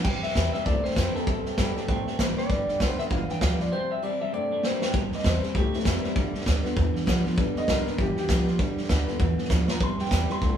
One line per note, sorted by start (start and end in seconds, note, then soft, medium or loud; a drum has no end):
0.04 0.22 C2 loud
0.04 0.64 C3 medium
0.04 0.22 C3 medium
0.04 0.22 G3 loud
0.04 0.16 E5 medium
0.04 0.09 G5 loud
0.04 0.16 G5 loud
0.04 kick loud
0.04 snare soft
0.04 crash medium
0.22 0.35 G2 medium
0.22 0.35 C3 medium
0.22 0.35 G3 medium
0.22 0.31 C5 medium
0.22 0.52 E5 medium
0.22 0.31 E5 medium
0.22 0.31 G5 medium
0.22 snare soft
0.29 snare soft
0.35 0.53 E2 medium
0.35 0.52 C3 medium
0.35 0.53 E3 medium
0.35 0.53 G3 medium
0.35 0.53 G3 loud
0.35 0.54 C4 medium
0.35 0.52 E4 loud
0.35 0.46 C5 medium
0.35 0.47 E5 medium
0.35 kick medium
0.35 snare loud
0.35 hi-hat pedal medium
0.53 0.65 C3 medium
0.53 0.66 G3 medium
0.53 0.66 C4 soft
0.53 0.66 E4 medium
0.53 0.61 C5 medium
0.53 0.65 E5 loud
0.53 0.61 G5 medium
0.53 muted upright bass stroke medium
0.53 snare soft
0.65 0.83 C2 loud
0.65 1.25 G2 medium
0.65 0.83 C3 medium
0.65 0.83 A3 loud
0.65 0.77 C5 loud
0.65 0.84 D5 medium
0.65 0.77 E5 medium
0.65 0.77 A5 loud
0.65 kick loud
0.65 snare soft
0.83 0.95 C3 medium
0.83 0.96 A3 medium
0.83 1.15 C5 loud
0.83 0.92 C5 medium
0.83 0.92 E5 medium
0.83 0.92 G5 medium
0.83 muted upright bass stroke medium
0.83 snare soft
0.90 snare soft
0.96 1.14 F2 loud
0.96 1.13 C3 medium
0.96 1.14 E3 medium
0.96 1.14 G3 medium
0.96 1.13 A#3 medium
0.96 1.14 C4 loud
0.96 1.14 E4 loud
0.96 1.08 C5 medium
0.96 1.08 G5 medium
0.96 kick loud
0.96 snare loud
0.96 hi-hat pedal loud
1.14 1.26 C3 medium
1.14 1.26 A#3 medium
1.14 1.28 C4 soft
1.14 1.27 E4 medium
1.14 2.20 A4 medium
1.14 1.22 C5 medium
1.14 1.22 E5 medium
1.14 1.23 G5 medium
1.14 muted upright bass stroke medium
1.14 snare soft
1.27 1.45 C2 medium
1.27 1.86 C3 loud
1.27 1.44 C3 medium
1.27 1.44 G3 loud
1.27 1.38 C5 medium
1.27 1.38 E5 medium
1.27 1.39 A5 loud
1.27 kick loud
1.27 snare soft
1.45 1.57 E2 medium
1.45 1.57 C3 medium
1.45 1.57 G3 medium
1.45 1.53 C5 medium
1.45 1.53 E5 medium
1.45 1.53 G5 medium
1.45 snare soft
1.58 1.75 G2 medium
1.58 1.75 C3 medium
1.58 1.76 E3 loud
1.58 1.76 G3 loud
1.58 1.75 G3 medium
1.58 1.76 C4 medium
1.58 1.75 E4 loud
1.58 1.69 C5 medium
1.58 1.69 E5 medium
1.58 1.69 G5 loud
1.58 kick medium
1.58 snare loud
1.58 hi-hat pedal medium
1.76 1.88 C3 medium
1.76 1.88 G3 medium
1.76 1.89 C4 soft
1.76 1.88 E4 medium
1.76 1.83 C5 medium
1.76 1.84 E5 medium
1.76 1.84 G5 loud
1.76 muted upright bass stroke medium
1.76 snare soft
1.88 2.48 G2 medium
1.88 2.06 A2 loud
1.88 2.05 C3 medium
1.88 2.06 A3 medium
1.88 1.99 C5 loud
1.88 2.00 E5 loud
1.88 2.00 G5 loud
1.88 kick loud
1.88 snare soft
2.06 2.18 C3 medium
2.06 2.18 A3 medium
2.06 2.14 C5 medium
2.06 2.14 E5 medium
2.06 2.14 G5 medium
2.06 muted upright bass stroke medium
2.06 snare soft
2.18 2.37 A1 loud
2.18 2.36 C3 medium
2.18 2.37 E3 medium
2.18 2.37 G3 loud
2.18 2.36 A#3 loud
2.18 2.37 C4 medium
2.18 2.37 E4 loud
2.18 2.30 C5 medium
2.18 2.25 C5 medium
2.18 2.30 E5 medium
2.18 2.30 A5 medium
2.18 kick medium
2.18 snare loud
2.18 hi-hat pedal loud
2.37 2.49 C3 medium
2.37 2.49 A#3 medium
2.37 2.50 C4 medium
2.37 2.49 E4 medium
2.37 2.45 C5 medium
2.37 2.86 D5 medium
2.37 2.45 E5 medium
2.37 2.45 G5 medium
2.37 muted upright bass stroke medium
2.37 snare soft
2.49 2.67 G1 loud
2.49 2.67 G2 medium
2.49 2.67 D3 loud
2.49 2.79 G3 medium
2.49 2.61 B4 loud
2.49 2.61 D5 medium
2.49 2.61 G5 loud
2.49 kick loud
2.49 snare soft
2.67 2.79 D2 medium
2.67 2.79 G2 medium
2.67 2.80 D3 medium
2.67 2.75 B4 medium
2.67 2.75 D5 medium
2.67 2.76 G5 medium
2.67 snare soft
2.80 2.98 B1 medium
2.80 2.97 G2 loud
2.80 2.97 D3 loud
2.80 3.10 G3 medium
2.80 3.10 B3 medium
2.80 3.10 F4 loud
2.80 2.91 B4 medium
2.80 2.91 D5 medium
2.80 2.92 G5 loud
2.80 kick medium
2.80 snare loud
2.80 hi-hat pedal medium
2.86 2.99 C5 medium
2.99 3.10 G2 medium
2.99 3.10 D3 medium
2.99 3.06 B4 medium
2.99 3.06 D5 medium
2.99 3.04 E5 loud
2.99 3.06 G5 medium
2.99 muted upright bass stroke medium
2.99 snare soft
3.10 3.28 G1 loud
3.10 3.27 G2 medium
3.10 3.69 D3 medium
3.10 3.28 E3 loud
3.10 3.22 B4 loud
3.10 3.22 D5 medium
3.10 3.22 F5 loud
3.10 3.31 F5 medium
3.10 kick loud
3.10 snare soft
3.28 3.40 G2 medium
3.28 3.41 E3 medium
3.28 3.36 B4 medium
3.28 3.36 D5 medium
3.28 3.36 E5 medium
3.28 3.41 G5 medium
3.28 muted upright bass stroke medium
3.28 snare soft
3.40 3.59 D2 loud
3.40 3.58 G2 medium
3.40 3.58 F3 medium
3.40 3.59 G3 loud
3.40 3.59 B3 loud
3.40 3.59 F4 loud
3.40 3.52 B4 medium
3.40 3.52 D5 medium
3.40 3.60 F5 loud
3.40 3.52 G5 medium
3.40 kick medium
3.40 snare loud
3.40 hi-hat pedal loud
3.59 3.71 G2 medium
3.59 3.71 F3 loud
3.59 3.73 B3 medium
3.59 3.72 F4 medium
3.59 3.67 B4 medium
3.59 3.67 D5 medium
3.59 3.73 D5 medium
3.59 3.67 E5 medium
3.59 muted upright bass stroke medium
3.59 snare soft
3.71 3.89 C3 medium
3.71 4.31 C3 medium
3.71 3.89 G3 medium
3.71 3.83 C5 medium
3.71 3.91 C5 loud
3.71 3.83 E5 medium
3.71 3.83 G5 medium
3.90 4.01 C3 medium
3.90 4.02 G3 medium
3.90 3.98 C5 medium
3.90 3.98 E5 medium
3.90 4.03 E5 medium
3.90 3.98 G5 medium
4.02 4.19 C3 medium
4.02 4.32 E3 medium
4.02 4.19 G3 loud
4.02 4.32 G3 medium
4.02 4.32 C4 medium
4.02 4.33 E4 medium
4.02 4.14 C5 medium
4.02 4.21 D5 medium
4.02 4.14 E5 medium
4.02 4.14 A5 medium
4.20 4.32 C3 medium
4.20 4.32 G3 medium
4.20 4.28 C5 medium
4.20 4.28 E5 medium
4.20 4.33 E5 loud
4.20 4.29 A5 medium
4.32 4.92 G2 medium
4.32 4.49 C3 medium
4.32 4.50 A3 medium
4.32 4.44 C5 medium
4.32 4.65 D5 medium
4.32 4.44 E5 medium
4.32 4.44 G5 loud
4.51 4.62 C3 medium
4.51 4.63 A3 medium
4.51 4.59 C5 medium
4.51 4.59 E5 medium
4.51 4.59 A5 medium
4.63 4.80 C3 medium
4.63 4.93 E3 medium
4.63 4.93 G3 medium
4.63 4.80 A#3 medium
4.63 4.94 C4 loud
4.63 4.94 E4 loud
4.63 4.74 C5 medium
4.63 4.87 C5 medium
4.63 4.75 E5 medium
4.63 4.75 G5 medium
4.63 snare medium
4.81 4.93 C3 medium
4.81 4.93 A#3 medium
4.81 4.89 C5 medium
4.81 4.89 E5 medium
4.81 4.90 G5 medium
4.81 snare medium
4.94 5.11 C2 loud
4.94 5.53 C3 medium
4.94 5.11 C3 medium
4.94 5.40 E3 medium
4.94 5.40 G3 soft
4.94 5.11 G3 loud
4.94 5.41 C4 medium
4.94 kick loud
4.94 snare soft
5.11 5.24 G2 medium
5.11 5.24 C3 medium
5.11 5.24 G3 medium
5.11 5.25 D#5 medium
5.11 snare soft
5.18 snare soft
5.24 5.42 E2 medium
5.24 5.41 C3 loud
5.24 5.42 E3 medium
5.24 5.42 G3 loud
5.24 5.43 G3 medium
5.24 5.43 C4 medium
5.24 5.42 E4 medium
5.24 5.55 C5 loud
5.24 kick medium
5.24 snare loud
5.24 hi-hat pedal medium
5.43 5.53 C3 medium
5.43 5.54 G3 medium
5.43 5.55 C4 medium
5.43 5.55 E4 medium
5.43 muted upright bass stroke medium
5.43 snare soft
5.55 5.72 C2 loud
5.55 5.71 C3 medium
5.55 5.72 A3 loud
5.55 5.74 G4 loud
5.55 kick loud
5.55 snare soft
5.73 5.84 C3 medium
5.73 5.84 A3 medium
5.73 6.14 C4 medium
5.73 6.63 E4 medium
5.73 muted upright bass stroke medium
5.73 snare soft
5.79 snare soft
5.85 6.03 F2 loud
5.85 6.02 C3 medium
5.85 6.14 E3 loud
5.85 6.14 G3 loud
5.85 6.02 A#3 medium
5.85 6.15 C4 medium
5.85 6.15 E4 loud
5.85 kick loud
5.85 snare loud
5.85 hi-hat pedal medium
6.03 6.14 C3 medium
6.03 6.15 A#3 medium
6.03 muted upright bass stroke medium
6.03 snare soft
6.16 6.34 G1 medium
6.16 6.32 G2 medium
6.16 6.33 D3 loud
6.16 6.44 G3 medium
6.16 kick loud
6.16 snare soft
6.34 6.46 B1 medium
6.34 6.44 G2 medium
6.34 6.45 D3 medium
6.34 snare soft
6.41 snare soft
6.46 6.64 D2 medium
6.46 6.63 G2 medium
6.46 6.63 D3 loud
6.46 6.64 G3 medium
6.46 6.64 B3 medium
6.46 6.62 F4 medium
6.46 kick medium
6.46 snare loud
6.46 hi-hat pedal medium
6.64 6.75 G2 medium
6.64 6.76 D3 medium
6.64 7.36 F3 medium
6.64 7.36 A3 soft
6.64 6.77 B3 soft
6.64 7.37 B3 medium
6.64 6.76 F4 medium
6.64 muted upright bass stroke medium
6.64 snare soft
6.76 6.95 E2 loud
6.76 6.93 G2 medium
6.76 7.35 D3 medium
6.76 6.93 E3 loud
6.76 kick loud
6.76 snare soft
6.94 7.06 G2 medium
6.94 7.06 E3 medium
6.94 muted upright bass stroke medium
6.94 snare soft
7.06 7.24 B1 loud
7.06 7.24 G2 medium
7.06 7.24 F3 loud
7.06 7.24 G3 loud
7.06 7.25 B3 medium
7.06 7.24 F4 loud
7.06 kick loud
7.06 snare loud
7.06 hi-hat pedal loud
7.25 7.36 G2 medium
7.25 7.37 F3 loud
7.25 7.38 B3 medium
7.25 7.37 F4 medium
7.25 muted upright bass stroke medium
7.25 snare soft
7.36 7.55 G1 medium
7.36 7.54 G2 medium
7.36 7.54 D3 loud
7.36 7.54 F3 soft
7.36 7.66 G3 medium
7.36 7.54 A3 soft
7.36 8.56 B3 medium
7.36 8.56 A4 soft
7.36 kick loud
7.36 snare soft
7.55 7.67 D2 medium
7.55 7.67 G2 medium
7.55 7.67 D3 medium
7.55 7.69 D#5 loud
7.55 snare soft
7.67 7.85 B1 medium
7.67 7.85 G2 medium
7.67 7.85 D3 loud
7.67 7.85 G3 medium
7.67 7.86 B3 medium
7.67 7.84 F4 loud
7.67 7.99 A#4 loud
7.67 kick medium
7.67 snare loud
7.67 hi-hat pedal medium
7.85 7.97 G2 medium
7.85 7.98 D3 medium
7.85 7.99 B3 medium
7.85 7.98 F4 medium
7.85 muted upright bass stroke medium
7.85 snare soft
7.98 8.15 G1 loud
7.98 8.15 G2 medium
7.98 8.57 D3 medium
7.98 8.15 E3 medium
7.98 8.17 G4 loud
7.98 kick loud
7.98 snare soft
8.16 8.27 G2 medium
8.16 8.28 E3 medium
8.16 9.07 G4 loud
8.16 muted upright bass stroke medium
8.16 snare soft
8.28 8.46 C2 loud
8.28 8.45 G2 medium
8.28 8.46 F3 medium
8.28 8.46 G3 medium
8.28 8.47 B3 loud
8.28 8.46 F4 loud
8.28 kick loud
8.28 snare loud
8.28 hi-hat pedal loud
8.47 8.58 G2 medium
8.47 8.58 F3 loud
8.47 8.60 B3 soft
8.47 8.59 F4 medium
8.47 muted upright bass stroke medium
8.47 snare soft
8.59 8.77 G1 medium
8.59 8.76 G2 medium
8.59 8.76 D3 loud
8.59 8.88 G3 medium
8.59 kick loud
8.59 snare soft
8.77 8.89 B1 medium
8.77 8.88 G2 medium
8.77 8.89 D3 medium
8.77 snare soft
8.83 snare soft
8.89 9.07 D2 loud
8.89 9.06 G2 loud
8.89 9.06 D3 loud
8.89 9.07 G3 loud
8.89 9.08 B3 loud
8.89 9.07 F4 loud
8.89 kick medium
8.89 snare loud
8.89 hi-hat pedal medium
9.07 9.18 G2 medium
9.07 9.19 D3 medium
9.07 9.77 F3 medium
9.07 9.77 A3 medium
9.07 9.78 B3 medium
9.07 9.21 B3 medium
9.07 9.20 F4 medium
9.07 muted upright bass stroke medium
9.07 snare soft
9.19 9.37 E2 loud
9.19 9.36 G2 medium
9.19 9.79 D3 medium
9.19 9.37 E3 medium
9.19 kick loud
9.19 snare soft
9.38 9.49 G2 medium
9.38 9.50 E3 medium
9.38 muted upright bass stroke medium
9.38 snare soft
9.44 snare soft
9.49 9.68 D2 loud
9.49 9.67 G2 medium
9.49 9.67 F3 loud
9.49 9.68 G3 loud
9.49 9.68 B3 loud
9.49 9.66 F4 medium
9.49 kick loud
9.49 snare medium
9.49 hi-hat pedal loud
9.68 9.80 G2 medium
9.68 9.80 F3 medium
9.68 9.81 B3 soft
9.68 9.80 F4 medium
9.68 9.82 A#5 loud
9.68 muted upright bass stroke medium
9.68 snare loud
9.80 9.99 C2 medium
9.80 10.39 C3 medium
9.80 9.98 C3 medium
9.80 10.03 E3 medium
9.80 10.03 G3 medium
9.80 9.98 G3 medium
9.80 10.03 C4 medium
9.80 10.00 C6 medium
9.80 kick loud
9.80 snare soft
9.99 10.10 G2 medium
9.99 10.10 C3 medium
9.99 10.10 G3 medium
9.99 10.30 G5 loud
9.99 snare soft
10.05 snare soft
10.10 10.29 E2 medium
10.10 10.28 C3 medium
10.10 10.29 E3 medium
10.10 10.29 G3 medium
10.10 10.28 G3 loud
10.10 10.29 C4 medium
10.10 10.28 E4 loud
10.10 kick medium
10.10 snare loud
10.10 hi-hat pedal medium
10.29 10.40 C3 medium
10.29 10.41 E3 medium
10.29 10.41 G3 soft
10.29 10.41 G3 medium
10.29 10.41 C4 medium
10.29 10.42 C4 medium
10.29 10.41 E4 medium
10.29 10.57 C6 loud
10.29 muted upright bass stroke medium
10.29 snare soft
10.42 10.57 C2 loud
10.42 10.57 G2 medium
10.42 10.57 C3 medium
10.42 10.57 A3 loud
10.42 kick loud
10.42 snare soft